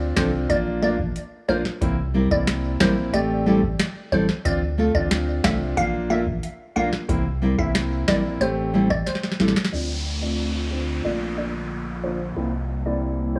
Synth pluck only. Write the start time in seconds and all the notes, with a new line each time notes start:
0.16 C5
0.50 D5
0.83 D5
1.49 C5
2.31 D5
2.81 C5
3.14 D5
4.12 C5
4.45 D5
4.95 D5
5.44 E5
5.77 F5
6.10 E5
6.76 F5
7.59 E5
8.08 D5
8.41 C5
8.90 D5
9.06 C5
9.73 D5
10.22 D5
10.72 C5
11.05 D5
11.38 D5
12.04 C5
12.86 D5
13.36 C5